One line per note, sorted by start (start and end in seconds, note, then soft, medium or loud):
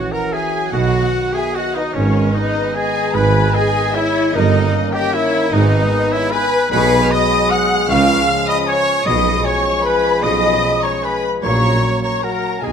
0.00 0.70 E3 medium
0.00 1.91 F#3 medium
0.00 0.73 C#4 medium
0.00 0.12 F#4 medium
0.00 0.14 F#4 medium
0.00 1.91 F#4 medium
0.00 0.14 C#5 medium
0.00 0.13 F#5 loud
0.12 0.34 A#4 medium
0.12 0.34 A#4 loud
0.12 0.33 A#4 medium
0.12 0.34 A#4 medium
0.12 0.35 F#5 medium
0.12 0.22 A#5 loud
0.33 0.72 G#4 medium
0.33 0.72 G#4 loud
0.33 0.73 G#4 medium
0.33 0.71 E5 loud
0.33 0.72 G#5 loud
0.72 1.05 B1 medium
0.72 1.06 B1 medium
0.72 1.05 B2 medium
0.72 1.92 D#3 medium
0.72 1.92 B3 medium
0.72 1.35 F#4 loud
0.72 1.34 F#4 loud
0.72 1.09 D#5 loud
0.72 1.34 F#5 loud
1.34 1.56 G#4 loud
1.34 1.56 G#4 medium
1.34 1.56 G#4 loud
1.34 1.44 G#4 medium
1.34 1.55 E5 loud
1.34 1.56 G#5 loud
1.55 1.76 F#4 loud
1.55 1.75 F#4 loud
1.55 1.77 F#4 medium
1.55 1.76 F#4 loud
1.55 1.76 D#5 medium
1.55 1.75 F#5 loud
1.74 1.95 D#4 medium
1.74 1.97 D#4 medium
1.74 1.96 D#4 medium
1.74 1.82 B4 loud
1.74 1.96 D#5 loud
1.93 2.28 G#1 medium
1.93 2.28 G#1 loud
1.93 2.28 G#2 loud
1.93 4.31 D#3 medium
1.93 4.35 G#3 medium
1.93 4.17 B3 medium
1.93 2.33 C#4 loud
1.93 2.34 C#4 loud
1.93 2.35 C#4 loud
1.93 2.36 A#4 medium
1.93 4.17 B4 medium
1.93 2.35 C#5 loud
2.34 2.75 D#4 loud
2.34 2.77 D#4 medium
2.34 2.76 D#4 loud
2.34 2.77 D#4 loud
2.34 2.76 B4 loud
2.34 2.76 D#5 loud
2.75 3.17 G#4 loud
2.75 3.16 G#4 medium
2.75 3.14 G#4 loud
2.75 3.15 G#4 loud
2.75 3.14 D#5 loud
2.75 3.15 G#5 loud
3.14 3.47 G#1 loud
3.14 3.47 G#2 loud
3.14 3.56 B4 loud
3.14 3.54 B4 loud
3.14 3.56 B4 loud
3.14 3.54 B4 loud
3.14 3.56 G#5 loud
3.14 3.54 B5 loud
3.54 3.97 G#4 loud
3.54 3.95 G#4 loud
3.54 3.96 G#4 loud
3.54 3.97 D#5 loud
3.54 3.95 G#5 loud
3.94 4.35 E4 loud
3.94 4.34 E4 loud
3.94 4.33 E4 loud
3.94 4.34 E4 loud
3.94 4.37 C#5 loud
3.94 4.34 E5 loud
4.33 4.66 G1 loud
4.33 4.66 G1 medium
4.33 4.66 G2 loud
4.33 6.53 D#3 loud
4.33 5.50 A#3 medium
4.33 5.50 C#4 medium
4.33 4.77 D#4 loud
4.33 4.94 D#4 loud
4.33 4.93 D#4 loud
4.33 4.93 D#4 medium
4.33 5.52 A#4 medium
4.33 4.96 A#4 loud
4.33 4.93 D#5 loud
4.93 5.15 G4 loud
4.93 5.14 G4 loud
4.93 5.16 G4 loud
4.93 5.14 G4 loud
4.93 5.14 D#5 loud
4.93 5.14 G5 loud
5.13 5.52 E4 loud
5.13 5.54 E4 loud
5.13 5.52 E4 loud
5.13 5.51 C#5 loud
5.13 5.52 E5 loud
5.52 5.84 G#1 loud
5.52 5.85 G#1 loud
5.52 5.85 G#2 loud
5.52 6.53 G#3 medium
5.52 6.69 B3 loud
5.52 6.12 D#4 loud
5.52 6.14 D#4 loud
5.52 6.13 D#4 loud
5.52 6.14 B4 loud
5.52 6.71 B4 loud
5.52 6.12 D#5 loud
6.11 6.33 E4 loud
6.11 6.34 E4 loud
6.11 6.32 E4 loud
6.11 6.33 E4 loud
6.11 6.32 C#5 loud
6.11 6.32 E5 loud
6.32 6.71 B4 loud
6.32 6.70 B4 loud
6.32 6.71 G#5 loud
6.32 6.69 B5 loud
6.70 7.03 B1 loud
6.70 7.04 B1 loud
6.70 7.04 B2 loud
6.70 7.85 F#3 loud
6.70 9.02 G#3 loud
6.70 7.85 B3 loud
6.70 9.03 G#4 loud
6.70 7.13 B4 loud
6.70 7.10 B4 loud
6.70 7.13 B4 loud
6.70 7.10 B4 loud
6.70 7.13 G#5 loud
6.70 7.02 B5 loud
7.04 7.11 F6 loud
7.11 7.53 D#5 loud
7.11 7.51 D#5 loud
7.11 7.52 D#5 loud
7.11 7.52 B5 loud
7.11 7.51 D#6 loud
7.50 7.88 F#5 loud
7.50 7.89 F#5 loud
7.50 7.88 D#6 loud
7.50 7.89 F#6 loud
7.88 8.21 C#2 loud
7.88 8.44 C#3 loud
7.88 8.22 C#3 loud
7.88 9.04 F3 medium
7.88 9.04 C#4 medium
7.88 8.31 F5 loud
7.88 8.47 F5 loud
7.88 8.49 F5 loud
7.88 8.47 F5 loud
7.88 8.21 C#6 loud
7.88 8.48 F6 loud
8.48 8.57 D#5 loud
8.48 8.68 D#5 loud
8.48 8.58 D#5 loud
8.48 8.68 B5 loud
8.48 8.68 D#6 loud
8.67 9.06 C#5 loud
8.67 9.07 C#5 loud
8.67 9.08 C#5 loud
8.67 9.05 G#5 loud
8.67 9.08 C#6 loud
9.05 9.38 B1 loud
9.05 9.39 B1 loud
9.05 9.39 B2 loud
9.05 11.38 F3 medium
9.05 11.38 G#3 loud
9.05 11.27 C#4 medium
9.05 11.27 G#4 loud
9.05 9.47 D#5 loud
9.05 9.44 D#5 loud
9.05 9.47 D#5 loud
9.05 9.45 D#5 loud
9.05 9.46 B5 loud
9.05 9.45 D#6 loud
9.44 9.84 C#5 loud
9.44 9.85 C#5 loud
9.44 9.84 C#5 loud
9.44 9.85 C#5 loud
9.44 9.85 G#5 loud
9.44 9.85 C#6 loud
9.85 10.22 B4 loud
9.85 10.25 B4 loud
9.85 10.24 B4 loud
9.85 10.23 B4 loud
9.85 10.25 G#5 loud
9.85 10.23 B5 loud
10.22 10.55 B1 loud
10.22 10.55 B1 medium
10.22 10.55 B2 loud
10.22 10.83 D#5 loud
10.22 10.85 D#5 loud
10.22 10.82 D#5 loud
10.22 10.84 D#5 loud
10.22 10.82 B5 loud
10.22 10.82 D#6 loud
10.82 11.05 C#5 medium
10.82 11.04 C#5 loud
10.82 11.06 C#5 loud
10.82 11.04 C#5 loud
10.82 10.88 A#5 medium
10.82 11.04 C#6 loud
11.03 11.24 B4 medium
11.03 11.24 B4 loud
11.03 11.24 B4 medium
11.03 11.23 G#5 medium
11.03 11.23 B5 loud
11.42 11.75 A#1 loud
11.42 11.76 A#1 medium
11.42 11.75 A#2 loud
11.42 12.18 F#3 medium
11.42 12.18 A#3 medium
11.42 12.20 C#4 medium
11.42 12.20 F#4 medium
11.42 11.99 C#5 loud
11.42 11.99 A#5 loud
11.42 11.98 C#6 loud
12.02 12.25 C#5 loud
12.02 12.23 C#5 loud
12.02 12.12 C#5 medium
12.02 12.25 A#5 loud
12.02 12.23 C#6 loud
12.22 12.61 F#3 medium
12.22 12.61 A#3 medium
12.22 12.63 C#4 medium
12.22 12.62 F#4 medium
12.22 12.62 A#4 medium
12.22 12.62 A#4 loud
12.22 12.65 A#4 medium
12.22 12.63 A#4 loud
12.22 12.63 F#5 medium
12.22 12.62 A#5 loud
12.62 12.72 B1 medium
12.62 12.72 B2 medium
12.62 12.72 F#3 medium
12.62 12.72 G#3 medium
12.62 12.72 B3 medium
12.62 12.72 G#4 medium
12.62 12.72 D#5 medium
12.62 12.72 G#5 loud